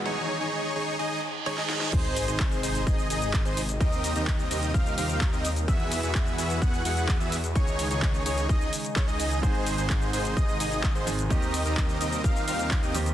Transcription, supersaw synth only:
X:1
M:4/4
L:1/16
Q:1/4=128
K:Ab
V:1 name="Supersaw synth"
[EAd]3 [EAd]3 [EAd]2 [EAe]2 z2 [EAd] [EAe]3 | [EAc]3 [EAc]3 [EAc]2 [EAe]2 [EAe]3 [EAc] z2 | [CEGBe]3 [CEGBe]3 [CEGBe]2 [CEGBf]2 [CEGBf]3 [CEGBe] z2 | [=B,=E^F^G=e]3 [B,EFGe]3 [B,EFGe]2 [B,FG^f]2 [B,EFGf]3 [B,EFGe] z2 |
[EAd]3 [EAd]3 [EAd]2 [EAe]2 z2 [EAd] [EAe]3 | [EAc]3 [EAc]3 [EAc]2 [EAe]2 [EAe]3 [EAc] z2 | [CEGBe]3 [CEGBe]3 [CEGBe]2 G2 [CEGBf]3 [CEGBe] z2 |]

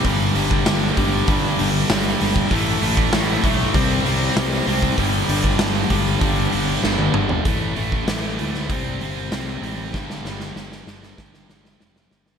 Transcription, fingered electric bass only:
X:1
M:4/4
L:1/8
Q:1/4=97
K:Gmix
V:1 name="Fingered electric bass" clef=bass
G,,, G,,, G,,, G,,, G,,, G,,, G,,, G,,, | A,,, A,,, A,,, B,,, C,, C,, C,, C,, | G,,, G,,, G,,, G,,, G,,, G,,, G,,, G,,, | A,,, A,,, A,,, D,, C,, G,,, C,, A,,, |
G,,, G,,, G,,, G,,, G,,, G,,, F,,, G,,, |]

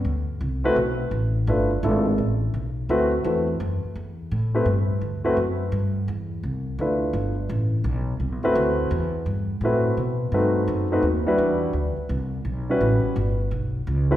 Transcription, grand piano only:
X:1
M:4/4
L:1/8
Q:"Swing" 1/4=170
K:D
V:1 name="Grand piano"
z3 [A,=CEFB] z4 | [A,DE=FB] z [A,DEFA] z4 z | [A,=CEFB] z [A,CEFB] z4 z | z [A,=CEGB] z3 [A,CEFB] z2 |
z6 [A,DE=FB]2- | [A,DE=FB] z6 [A,=CE^FB]- | [A,=CEFB]2 z4 [A,CEFB]2 | z2 [A,=C^DFB]3 [A,CDFB] z [G,=DEFB]- |
[G,DEFB]2 z4 z [G,CEFB]- | [G,CEFB]2 z4 z [A,=CEFB] |]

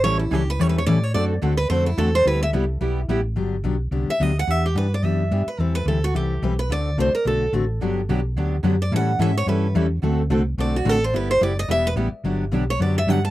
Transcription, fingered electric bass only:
X:1
M:4/4
L:1/8
Q:"Swing" 1/4=216
K:G
V:1 name="Fingered electric bass" clef=bass
A,,,2 ^C,,2 E,,2 A,,2 | F,,2 D,,2 =F,,2 E,,2 | D,,2 C,,2 B,,,2 A,,,2 | G,,,2 B,,,2 C,, z D,,2 |
E,,2 G,,2 F,,2 G,, z | E,,2 D,,2 C,,2 B,,,2 | D,,2 C,, z B,,,2 A,,,2 | G,,,2 B,,,2 D,,2 F,,2 |
A,,2 _A,,2 G,,2 E,,2 | D,,2 C,,2 B,,,2 A,,,2 | G,,,2 F,,,2 E,,,2 A,,, z | G,,,2 B,,,2 F,,2 G,,2 |]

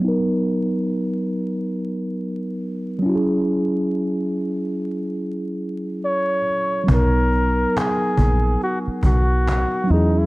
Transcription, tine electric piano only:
X:1
M:4/4
L:1/8
Q:"Swing 16ths" 1/4=70
K:B
V:1 name="Tine electric piano"
[F,B,DA]6- [F,B,DA] [F,CEFG]- | [F,CEFG]6- [F,CEFG] z | [F,B,DA]6- [F,B,DA] [F,CEG] |]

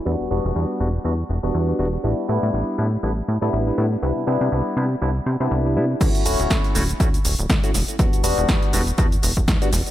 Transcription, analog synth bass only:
X:1
M:4/4
L:1/16
Q:"Swing 16ths" 1/4=121
K:D
V:1 name="Analog synth bass" clef=bass
E,, E,,, E,,, E,,, E,, z E,,, z E,, z E,,, E,,, E,, z E,,, z | A,,, z A,, A,, A,,, z A,, z A,,, z A,, A,, A,,, z A,, z | =C,, =C, C, C, C,, z C, z C,, z C, C, C,,2 C, z | D,, z D,,, D,,, D,, z D,,, z D,, z D,,, D,,, D,, z E,,, z |
E,, E,,, E,,, E,,, E,, z E,,, z E,, z E,,, E,,, E,, z E,,, z |]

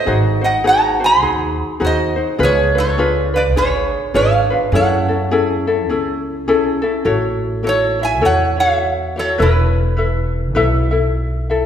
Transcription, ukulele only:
X:1
M:4/4
L:1/8
Q:"Swing" 1/4=103
K:C#phr
V:1 name="Ukulele"
[^DFG^B] [DFB] [DFGB] [DFB] [DFGB]2 [DFGB] [DFB] | [D^EGB] [DEB] [DEGB] [DEB] [DEGB]2 [DEGB] [DEB] | [CEGA] [CEA] [CEGA] [CEA] [CEGA]2 [CEGA] [CEA] | [K:A] [EFAc]2 [EFAc] [EFc] [EFAc] [EFc]2 [EFc] |
[EABe]2 [EABe]2 [EABe] [EAe]2 [EAe] |]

